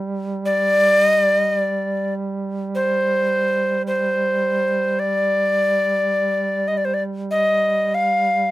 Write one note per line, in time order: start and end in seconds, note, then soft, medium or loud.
0.00 8.51 G3 soft
0.45 1.07 D5 loud
1.07 1.19 D#5 loud
1.19 1.40 D5 loud
1.40 1.53 D#5 loud
1.53 2.14 D5 loud
2.75 3.82 C5 medium
3.87 5.01 C5 medium
4.99 6.69 D5 medium
6.68 6.79 D#5 medium
6.77 6.86 D5 medium
6.85 6.95 C5 medium
6.94 7.03 D5 medium
7.31 7.96 D#5 medium
7.94 8.51 F5 medium